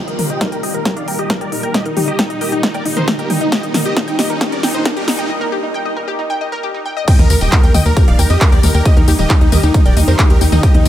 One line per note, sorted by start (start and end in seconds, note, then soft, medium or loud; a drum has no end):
0.00 riser medium
0.08 0.18 A#4 medium
0.08 0.12 D#5 medium
0.08 closed hi-hat soft
0.19 0.29 A#4 medium
0.19 0.23 A#4 medium
0.19 open hi-hat loud
0.19 mid tom medium
0.30 0.36 G4 medium
0.30 0.40 D#5 medium
0.30 0.40 G5 medium
0.30 closed hi-hat soft
0.41 0.45 D#4 loud
0.41 0.51 A#4 medium
0.41 kick loud
0.41 snare soft
0.41 closed hi-hat medium
0.52 0.62 A#4 medium
0.52 0.56 G5 loud
0.52 closed hi-hat soft
0.63 0.73 D#5 medium
0.63 0.70 D#5 medium
0.63 0.73 G5 medium
0.63 open hi-hat medium
0.74 0.84 A#4 medium
0.74 0.81 A#4 medium
0.74 closed hi-hat soft
0.85 0.92 G4 medium
0.85 0.95 A#4 medium
0.85 kick loud
0.85 snare soft
0.85 closed hi-hat medium
0.97 1.01 D#4 medium
0.97 1.07 D5 medium
0.97 1.07 F5 medium
0.97 closed hi-hat soft
1.08 1.18 A#4 medium
1.08 1.12 G5 medium
1.08 open hi-hat loud
1.19 1.29 G4 medium
1.19 1.29 D#5 medium
1.19 1.21 D#5 medium
1.19 closed hi-hat soft
1.30 1.40 A#4 medium
1.30 1.34 A#4 loud
1.30 kick loud
1.30 snare medium
1.30 closed hi-hat medium
1.41 1.45 G4 loud
1.41 1.51 A#4 medium
1.41 1.51 D5 medium
1.41 closed hi-hat soft
1.52 1.59 D#4 medium
1.52 1.62 A#4 medium
1.52 open hi-hat medium
1.63 1.73 A#4 medium
1.63 1.70 G5 medium
1.63 closed hi-hat soft
1.74 1.84 G4 medium
1.74 1.84 D#5 loud
1.74 1.79 D#5 medium
1.74 kick loud
1.74 snare medium
1.74 closed hi-hat medium
1.85 1.95 D#4 medium
1.85 1.90 A#4 loud
1.85 closed hi-hat soft
1.97 2.07 D#4 medium
1.97 1.99 G4 loud
1.97 open hi-hat loud
1.97 mid tom medium
2.08 2.10 D#4 medium
2.08 2.18 G4 medium
2.08 2.18 D#5 medium
2.08 closed hi-hat soft
2.19 2.29 D#4 medium
2.19 2.23 G5 loud
2.19 kick loud
2.19 snare medium
2.19 closed hi-hat medium
2.30 2.40 D#4 medium
2.30 2.33 D#5 medium
2.30 closed hi-hat soft
2.41 2.51 G4 medium
2.41 2.45 A#4 medium
2.41 2.51 D#5 medium
2.41 open hi-hat medium
2.52 2.62 D#4 medium
2.52 2.56 G4 loud
2.52 closed hi-hat soft
2.63 2.70 D#4 medium
2.63 2.73 D#4 medium
2.63 kick loud
2.63 snare medium
2.63 closed hi-hat medium
2.74 2.84 A#4 medium
2.74 2.84 D5 medium
2.74 2.79 G5 loud
2.74 closed hi-hat soft
2.85 2.95 D#4 medium
2.85 2.88 D#5 medium
2.85 open hi-hat loud
2.97 3.07 D#4 medium
2.97 3.03 A#4 loud
2.97 3.07 C5 medium
2.97 closed hi-hat soft
2.97 mid tom medium
3.08 3.18 D#4 medium
3.08 3.12 G4 medium
3.08 kick loud
3.08 snare medium
3.08 closed hi-hat medium
3.08 mid tom medium
3.19 3.21 D#4 medium
3.19 3.29 G4 medium
3.19 3.29 A#4 medium
3.19 closed hi-hat soft
3.30 3.40 D#4 medium
3.30 3.34 G5 medium
3.30 open hi-hat loud
3.30 mid tom medium
3.41 3.51 D#4 medium
3.41 3.45 D#5 loud
3.41 closed hi-hat soft
3.52 3.62 G4 medium
3.52 3.62 D#5 loud
3.52 3.55 G5 medium
3.52 kick loud
3.52 snare medium
3.52 closed hi-hat medium
3.63 3.73 D#4 medium
3.63 3.68 D#5 medium
3.63 closed hi-hat soft
3.74 3.84 D#4 medium
3.74 3.79 A#4 medium
3.74 snare medium
3.74 open hi-hat loud
3.74 mid tom medium
3.85 3.95 G4 medium
3.85 3.92 G4 medium
3.85 3.95 D#5 medium
3.85 closed hi-hat soft
3.97 4.01 D#4 loud
3.97 4.07 D#4 medium
3.97 kick loud
3.97 snare medium
3.97 closed hi-hat medium
4.08 4.18 D#4 medium
4.08 4.12 G5 loud
4.08 closed hi-hat soft
4.19 4.29 G4 medium
4.19 4.29 D#5 medium
4.19 4.25 D#5 medium
4.19 snare medium
4.19 open hi-hat loud
4.30 4.40 D#4 medium
4.30 4.36 A#4 medium
4.30 closed hi-hat soft
4.41 4.51 D#4 medium
4.41 4.48 G4 medium
4.41 kick loud
4.41 snare medium
4.41 closed hi-hat medium
4.52 4.56 D#4 medium
4.52 4.62 A#4 medium
4.52 4.62 D5 medium
4.52 closed hi-hat soft
4.63 4.73 D#4 medium
4.63 4.68 G5 medium
4.63 snare medium
4.63 open hi-hat loud
4.74 4.84 D#4 medium
4.74 4.84 C5 medium
4.74 4.77 D#5 medium
4.74 closed hi-hat soft
4.85 4.96 D#4 medium
4.85 4.90 A#4 loud
4.85 kick loud
4.85 snare medium
4.85 closed hi-hat medium
4.97 5.01 G4 loud
4.97 5.07 G4 medium
4.97 5.07 A#4 medium
4.97 closed hi-hat soft
5.08 5.14 D#4 medium
5.08 5.18 D#4 medium
5.08 snare medium
5.08 open hi-hat loud
5.19 5.29 D#4 medium
5.19 5.25 G5 medium
5.19 closed hi-hat soft
5.30 5.34 D#5 medium
5.41 5.45 A#4 loud
5.52 5.55 G4 loud
5.63 5.66 D#4 medium
5.74 5.79 G5 loud
5.86 5.88 D#5 medium
5.97 6.01 A#4 medium
6.08 6.12 G4 loud
6.19 6.25 D#4 medium
6.30 6.34 G5 loud
6.41 6.44 D#5 medium
6.52 6.59 A#4 loud
6.63 6.68 G4 medium
6.74 6.77 D#4 medium
6.86 6.90 G5 medium
6.97 7.01 D#5 loud
7.08 7.18 D#5 medium
7.08 7.18 G5 loud
7.08 7.10 G5 medium
7.08 kick loud
7.08 closed hi-hat medium
7.08 crash loud
7.08 tambourine soft
7.08 impact medium
7.19 7.26 D#2 medium
7.19 7.29 A#4 medium
7.19 7.23 D#5 medium
7.19 closed hi-hat soft
7.19 mid tom medium
7.30 7.37 D#2 loud
7.30 7.40 A#4 medium
7.30 7.34 A#4 medium
7.30 7.40 A#4 medium
7.30 open hi-hat loud
7.30 tambourine medium
7.41 7.48 D#1 medium
7.41 7.48 G4 medium
7.41 7.51 D#5 medium
7.41 7.51 G5 loud
7.41 closed hi-hat soft
7.41 tambourine soft
7.52 7.57 D#4 loud
7.52 7.62 A#4 medium
7.52 kick loud
7.52 clap loud
7.52 closed hi-hat medium
7.52 tambourine soft
7.63 7.71 D#2 medium
7.63 7.73 A#4 medium
7.63 7.68 G5 loud
7.63 closed hi-hat soft
7.74 7.82 D#2 loud
7.74 7.84 D#5 medium
7.74 7.81 D#5 medium
7.74 7.84 G5 loud
7.74 7.84 G5 medium
7.74 open hi-hat loud
7.74 mid tom medium
7.74 tambourine medium
7.85 7.93 D#2 medium
7.85 7.95 A#4 medium
7.85 7.96 A#4 medium
7.85 7.92 A#4 medium
7.85 closed hi-hat soft
7.85 tambourine soft
7.97 8.03 G4 medium
7.97 8.07 A#4 medium
7.97 kick loud
7.97 closed hi-hat medium
7.97 tambourine soft
8.08 8.15 D#1 medium
8.08 8.12 D#4 medium
8.08 8.18 D5 medium
8.08 8.18 F5 medium
8.08 closed hi-hat soft
8.19 8.26 D#2 loud
8.19 8.29 A#4 medium
8.19 8.23 G5 medium
8.19 open hi-hat loud
8.19 tambourine medium
8.30 8.37 F2 medium
8.30 8.40 G4 medium
8.30 8.40 D#5 medium
8.30 8.33 D#5 medium
8.30 closed hi-hat soft
8.30 tambourine soft
8.41 8.51 A#4 medium
8.41 8.45 A#4 loud
8.41 kick loud
8.41 clap loud
8.41 closed hi-hat medium
8.41 tambourine soft
8.52 8.60 D#2 medium
8.52 8.57 G4 loud
8.52 8.62 A#4 medium
8.52 8.62 D5 medium
8.52 closed hi-hat soft
8.63 8.71 D#2 loud
8.63 8.70 D#4 medium
8.63 8.73 A#4 medium
8.63 open hi-hat loud
8.63 mid tom medium
8.63 tambourine medium
8.74 8.82 D#2 medium
8.74 8.84 A#4 medium
8.74 8.81 G5 medium
8.74 closed hi-hat soft
8.74 tambourine soft
8.85 8.95 G4 medium
8.85 8.95 D#5 loud
8.85 8.90 D#5 medium
8.85 kick loud
8.85 closed hi-hat medium
8.85 tambourine soft
8.97 9.04 D#2 medium
8.97 9.07 D#4 medium
8.97 9.01 A#4 loud
8.97 closed hi-hat soft
8.97 mid tom medium
9.08 9.15 D#2 loud
9.08 9.18 D#4 medium
9.08 9.10 G4 loud
9.08 open hi-hat loud
9.08 tambourine medium
9.19 9.26 D#1 medium
9.19 9.21 D#4 medium
9.19 9.29 G4 medium
9.19 9.29 D#5 loud
9.19 9.29 D#5 medium
9.19 closed hi-hat soft
9.19 mid tom medium
9.19 tambourine soft
9.30 9.40 D#4 medium
9.30 9.34 G5 loud
9.30 kick loud
9.30 clap loud
9.30 closed hi-hat medium
9.30 tambourine soft
9.41 9.48 D#2 medium
9.41 9.51 D#4 medium
9.41 9.44 D#5 medium
9.41 closed hi-hat soft
9.52 9.60 D#2 loud
9.52 9.62 G4 medium
9.52 9.57 A#4 medium
9.52 9.62 D#5 loud
9.52 open hi-hat loud
9.52 mid tom medium
9.52 tambourine medium
9.63 9.71 D#2 medium
9.63 9.73 D#4 medium
9.63 9.68 G4 loud
9.63 closed hi-hat soft
9.63 tambourine soft
9.74 9.84 D#4 medium
9.74 9.81 D#4 medium
9.74 kick loud
9.74 closed hi-hat medium
9.74 tambourine soft
9.85 9.93 D#1 medium
9.85 9.95 A#4 medium
9.85 9.95 D5 medium
9.85 9.90 G5 loud
9.85 closed hi-hat soft
9.97 10.04 D#2 loud
9.97 10.07 D#4 medium
9.97 9.99 D#5 medium
9.97 open hi-hat loud
9.97 tambourine medium
10.08 10.15 F2 medium
10.08 10.18 D#4 medium
10.08 10.14 A#4 loud
10.08 10.18 C5 medium
10.08 closed hi-hat soft
10.08 tambourine soft
10.19 10.29 D#4 medium
10.19 10.23 G4 medium
10.19 kick loud
10.19 clap loud
10.19 closed hi-hat medium
10.19 tambourine soft
10.30 10.37 D#2 medium
10.30 10.33 D#4 medium
10.30 10.40 G4 medium
10.30 10.40 A#4 medium
10.30 closed hi-hat soft
10.41 10.48 D#2 loud
10.41 10.51 D#4 medium
10.41 10.45 G5 medium
10.41 open hi-hat loud
10.41 tambourine medium
10.52 10.60 D#2 medium
10.52 10.62 D#4 medium
10.52 10.56 D#5 loud
10.52 closed hi-hat soft
10.52 mid tom medium
10.52 tambourine soft
10.63 10.73 G4 medium
10.63 10.73 D#5 loud
10.63 10.73 D#5 medium
10.63 10.66 G5 medium
10.63 kick loud
10.63 closed hi-hat medium
10.63 tambourine soft
10.74 10.82 D#2 medium
10.74 10.84 D#4 medium
10.74 10.79 D#5 medium
10.74 closed hi-hat soft
10.74 mid tom medium
10.85 10.88 D#2 loud
10.85 10.88 D#4 medium